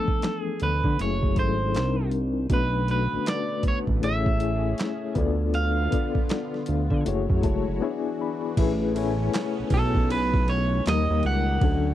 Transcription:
Already playing: reed electric piano E3 F3 A3 B3 D4 A4, clean electric guitar A4
0.08 kick
0.22 snare, clap, closed hi-hat
0.40 clean electric guitar G#4
0.60 analog synth bass D2, clean electric guitar B4, closed hi-hat
0.84 analog synth bass D3, kick
0.98 analog synth bass F#1, reed electric piano F#3 A3 C#4 E4 G#4, clean electric guitar C#5, closed hi-hat
1.23 kick
1.35 analog synth bass G#1, reed electric piano F#3 A3 C#4 E4 A4, clean electric guitar C5, kick, closed hi-hat
1.74 analog synth bass C2, reed electric piano G3 C4 D4 D#4 A#4, snare, clap, closed hi-hat
2.11 closed hi-hat
2.49 analog synth bass B1, analog synth pad D3 A3 B3, reed electric piano A3 C#4 D4 F#4 B4, kick, closed hi-hat
2.53 clean electric guitar B4
2.87 reed electric piano A3 B3 D4 F#4 B4, clean electric guitar B4, closed hi-hat
3.13 analog synth bass A1
3.26 clean electric guitar D5, snare, clap, closed hi-hat
3.63 analog synth bass A1, kick, closed hi-hat
3.68 clean electric guitar C#5
3.87 analog synth bass A1, kick
4.01 analog synth bass A1, reed electric piano A3 C#4 E4 G#4 C#5, analog synth pad C#4 G#4, clean electric guitar E5, closed hi-hat
4.26 kick
4.39 reed electric piano A3 C#4 E4 G#4 E5, closed hi-hat
4.78 snare, clap, closed hi-hat
5.15 analog synth bass D2, analog synth pad D3 B3 F4, reed electric piano B3 D4 F4 A4 D5, kick, closed hi-hat
5.54 clean electric guitar F5, closed hi-hat
5.91 reed electric piano B3 D4 F4 A4 D5, kick, closed hi-hat
6.15 kick
6.29 snare, clap, closed hi-hat
6.54 snare
6.66 analog synth bass D2, reed electric piano F5, closed hi-hat
6.91 analog synth bass D3, kick
7.05 analog synth bass F#1, analog synth pad F#3 E4 F#4 C#5, reed electric piano A3 E4 F#4 G#4 C#5 F#5, closed hi-hat
7.30 analog synth bass F#2, kick
7.42 analog synth bass F#1, reed electric piano G#3 A3 E4 F#4 C#5 A5, kick, closed hi-hat
7.68 analog synth bass F#1
7.81 analog synth pad E3 D4, reed electric piano B3 D4 E4 G#4 C#5 G#5
7.90 reed electric piano D5
8.21 reed electric piano B5
8.57 analog synth bass A1, reed electric piano A3 C#4 E4 G#4 B4, analog synth pad A3 B3 C#4, kick, crash, ride
8.95 reed electric piano A3 C#4 E4 C#5 G#5, ride
9.34 snare, clap, ride
9.59 analog synth bass B1
9.70 analog synth bass B1, clean electric guitar A4, kick, ride
9.95 kick
10.10 clean electric guitar B4, ride
10.34 kick
10.48 clean electric guitar C#5, ride
10.85 analog synth bass D#2, analog synth pad D#3 D#4 G4, reed electric piano F3 A#3 D#4 A#4, snare, clap, ride
10.89 reed electric piano G3, clean electric guitar D#5
11.10 analog synth bass D#2
11.23 analog synth bass C#2, clean electric guitar F#5, ride
11.61 analog synth bass D2, analog synth pad D3 F#4 C#5, reed electric piano F#3 A3 C#4 D4 A4, kick, ride

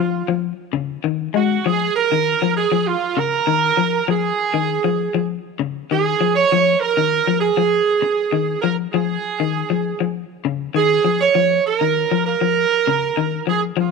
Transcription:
Already playing: horn section F4
0.00 clean electric guitar F3
0.28 clean electric guitar F3
0.73 clean electric guitar C#3
1.04 clean electric guitar D#3
1.34 clean electric guitar G#3, horn section F#4
1.66 clean electric guitar F3, horn section G#4
1.96 horn section A#4
2.12 clean electric guitar D#3
2.42 clean electric guitar F3
2.57 horn section G#4
2.72 clean electric guitar F3
2.87 horn section F4
3.17 clean electric guitar C#3, horn section A#4
3.47 clean electric guitar D#3
3.77 clean electric guitar F3
4.08 clean electric guitar F3, horn section G#4
4.54 clean electric guitar D#3
4.84 clean electric guitar F3
5.14 clean electric guitar F3
5.59 clean electric guitar C#3
5.91 clean electric guitar D#3, horn section G#4
6.21 clean electric guitar F3
6.36 horn section C#5
6.52 clean electric guitar F3
6.81 horn section A#4
6.97 clean electric guitar D#3
7.27 clean electric guitar F3
7.41 horn section G#4
7.57 clean electric guitar F3
8.02 muted clean electric guitar stroke
8.32 clean electric guitar D#3
8.62 clean electric guitar F3, horn section A#4
8.93 clean electric guitar F3, horn section G#4
9.40 clean electric guitar D#3
9.70 clean electric guitar F3
10.00 clean electric guitar F3
10.45 clean electric guitar C#3
10.74 clean electric guitar D#3, horn section G#4
11.04 clean electric guitar F3
11.21 horn section C#5
11.35 clean electric guitar F3
11.67 horn section A#4
11.81 clean electric guitar D#3
12.11 clean electric guitar F3
12.26 horn section A#4
12.41 clean electric guitar F3
12.87 clean electric guitar C#3
13.17 clean electric guitar D#3
13.47 clean electric guitar F3, horn section G#4
13.77 clean electric guitar F3
13.81 horn section F4

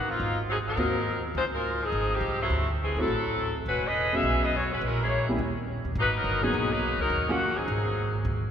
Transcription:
Already playing: upright bass A1
0.10 saxophone section A#3 C4 D#4 F4
0.20 upright bass G#1
0.50 saxophone section F#3 C4 D#4 G#4
0.67 saxophone section F#3 C4 D#4 A#4
0.77 upright bass D#2, upright piano A#3 C4 F4 F#4
1.35 upright bass C#2, saxophone section G#3 D#4 F4 C5
1.54 saxophone section G#3 D#4 F4 A#4
1.84 saxophone section F3 C4 D#4 G#4
1.92 upright bass G#1
2.14 saxophone section F3 C4 D#4 G4
2.21 upright bass C2
2.42 saxophone section F#3 A3 C4 E4
2.50 upright bass D2
2.83 saxophone section E3 A3 C4 G#4
2.97 upright bass C#2, saxophone section F#3 C4 E4 A4, upright piano A3 C4 E4 F#4
3.08 upright bass A1
3.66 upright bass E1, saxophone section G#3 C#4 F#4 B4
3.86 saxophone section C#4 G#4 B4 D#5
4.13 upright piano G#3 B3 C#4 F#4, saxophone section C#4 G#4 B4 E5
4.23 upright bass B1
4.44 saxophone section B3 E4 G#4 D#5
4.55 saxophone section B3 F#4 G#4 C#5
4.73 saxophone section G#3 C#4 F#4 B4
4.81 upright bass A#1, saxophone section G#3 C#4 A#4
4.85 saxophone section E4
5.02 saxophone section A#3 E4 G#4 C#5
5.29 upright piano G3 A#3 C#4 E4
5.39 upright bass D#2
5.85 upright bass D#2
5.95 upright bass G#1, saxophone section F#3 A#3 D#4 B4
6.16 saxophone section F#3 B3 D#4 A#4
6.24 upright bass G1
6.42 upright piano F#3 A#3 B3 D#4, saxophone section F#3 B3 D#4 G#4
6.54 upright bass B1
6.71 saxophone section F#3 A#3 D#4 B4
6.99 upright bass C#2, saxophone section F#3 C#4 D#4 A#4
7.10 upright bass D#2
7.28 saxophone section D#3 A#3 C#4 F#4, upright piano F#3 A#3 C#4 F4
7.57 saxophone section F#3 C4 D#4 G#4
7.68 upright bass G#1
8.25 upright bass C#2
8.43 muted upright bass stroke

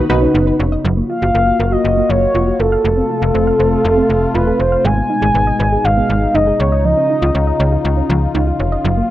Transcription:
Already playing: analog synth pad C#3 B3 D#4
0.10 fm bass B1, synth arpeggio sound B3, analog polysynth D#4 F#4 B4
0.22 synth arpeggio sound C#4
0.35 fm bass F#1, synth arpeggio sound D#4
0.47 synth arpeggio sound B4
0.60 fm bass F1, synth arpeggio sound C#5
0.72 synth arpeggio sound D#5
0.85 fm bass F#1, synth arpeggio sound F#3, analog synth pad A#3 F4 F#4
0.97 synth arpeggio sound A#3
1.10 synth arpeggio sound F4, soft synth lead F5
1.22 fm bass F#1, synth arpeggio sound F#4
1.35 fm bass F#1, synth arpeggio sound A#4
1.47 synth arpeggio sound F5
1.60 fm bass F#1, synth arpeggio sound A#4
1.72 synth arpeggio sound F#4, soft synth lead D#5
1.85 fm bass F#1
1.97 synth arpeggio sound A#3
2.10 fm bass F#1, synth arpeggio sound F#3, soft synth lead C#5
2.35 fm bass F1, synth arpeggio sound F4
2.47 synth arpeggio sound F#4
2.60 fm bass F#1, soft synth lead A4, synth arpeggio sound A#4
2.72 synth arpeggio sound F5
2.85 fm bass F1, analog synth pad C3 A3 F4, synth arpeggio sound A3
2.97 synth arpeggio sound C4
3.10 synth arpeggio sound F4
3.22 fm bass F1, synth arpeggio sound A4
3.35 fm bass F1, synth arpeggio sound C5
3.47 synth arpeggio sound F5
3.60 fm bass F1, synth arpeggio sound C5
3.72 synth arpeggio sound A4
3.85 fm bass F1
3.97 synth arpeggio sound C4
4.10 fm bass F1, synth arpeggio sound A3
4.35 fm bass E1, synth arpeggio sound F4, soft synth lead B4
4.47 synth arpeggio sound A4
4.60 fm bass F1, soft synth lead C5, synth arpeggio sound C5
4.72 synth arpeggio sound F5
4.85 fm bass G#1, analog synth pad B2 G#3 D#4, synth arpeggio sound G#3, soft synth lead G#5
4.97 synth arpeggio sound B3
5.10 synth arpeggio sound D#4
5.22 fm bass G#1, synth arpeggio sound G#4
5.35 fm bass G#1, synth arpeggio sound B4
5.47 synth arpeggio sound D#5
5.60 fm bass G#1, synth arpeggio sound B4
5.72 synth arpeggio sound G#4
5.85 fm bass G#1, soft synth lead F5
5.97 synth arpeggio sound B3
6.10 fm bass G#1, synth arpeggio sound G#3
6.35 fm bass F#1, synth arpeggio sound D#4, soft synth lead D#5
6.47 synth arpeggio sound G#4
6.60 fm bass C#2, analog synth pad C#3 F4, synth arpeggio sound C#5, soft synth lead C#5
6.72 synth arpeggio sound D#5
6.85 synth arpeggio sound F3, soft synth lead D#5
6.97 synth arpeggio sound C#4
7.10 synth arpeggio sound D#4
7.22 fm bass C#2, synth arpeggio sound F4
7.35 fm bass C#2, synth arpeggio sound C#5
7.47 synth arpeggio sound D#5
7.60 fm bass C#2, synth arpeggio sound C#5
7.72 synth arpeggio sound F4
7.85 fm bass C#2
7.97 synth arpeggio sound C#4
8.10 fm bass C#2, synth arpeggio sound F3
8.35 fm bass C#2, synth arpeggio sound D#4
8.47 synth arpeggio sound F4
8.60 fm bass F1, synth arpeggio sound C#5
8.72 synth arpeggio sound D#5
8.85 fm bass F#1, synth arpeggio sound F#3, analog synth pad A#3 F#4
8.97 synth arpeggio sound A#3

